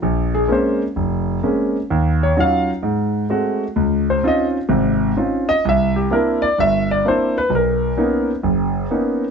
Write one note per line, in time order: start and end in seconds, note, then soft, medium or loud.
0.02 0.43 A#1 medium
0.34 0.50 G#4 medium
0.48 0.82 G#3 medium
0.48 0.82 A#3 medium
0.48 0.82 C4 soft
0.48 0.82 C#4 medium
0.52 0.81 C5 medium
0.96 1.37 F1 medium
1.43 1.76 G#3 soft
1.43 1.76 A#3 soft
1.43 1.76 C4 soft
1.43 1.76 C#4 medium
1.90 2.31 D#2 medium
2.23 2.37 C#5 medium
2.37 2.70 F#3 medium
2.37 2.69 C#4 soft
2.37 2.70 D#4 medium
2.37 2.69 F4 medium
2.37 2.69 F5 medium
2.83 3.24 G#2 medium
3.30 3.63 G#3 medium
3.30 3.63 A3 soft
3.30 3.63 C4 soft
3.30 3.63 F#4 medium
3.76 4.17 C#2 medium
4.10 4.24 C5 medium
4.23 4.56 C4 medium
4.23 4.57 C#4 medium
4.23 4.57 D#4 medium
4.23 4.57 F4 medium
4.28 4.45 D#5 medium
4.69 5.10 G#1 medium
4.69 5.10 C3 medium
5.17 5.50 C4 soft
5.17 5.50 C#4 soft
5.17 5.50 D#4 soft
5.17 5.50 F4 medium
5.49 5.64 D#5 loud
5.65 6.05 C2 medium
5.65 5.97 E5 medium
5.96 6.11 G4 medium
6.11 6.43 A#3 medium
6.11 6.43 C4 soft
6.11 6.44 D4 soft
6.11 6.44 E4 medium
6.11 6.42 A#4 medium
6.42 6.57 D5 medium
6.58 6.98 G1 medium
6.58 6.89 E5 loud
6.91 7.05 D5 medium
7.05 7.37 A#3 soft
7.05 7.37 C4 soft
7.05 7.37 D4 soft
7.05 7.37 E4 medium
7.05 7.36 C5 medium
7.38 7.52 B4 medium
7.50 7.91 B1 medium
7.55 8.27 A#4 medium
7.97 8.30 A#3 medium
7.97 8.30 B3 soft
7.97 8.30 C#4 medium
7.97 8.30 D#4 medium
8.43 8.84 F#1 medium
8.91 9.23 A#3 soft
8.91 9.24 B3 soft
8.91 9.24 C#4 soft
8.91 9.24 D#4 medium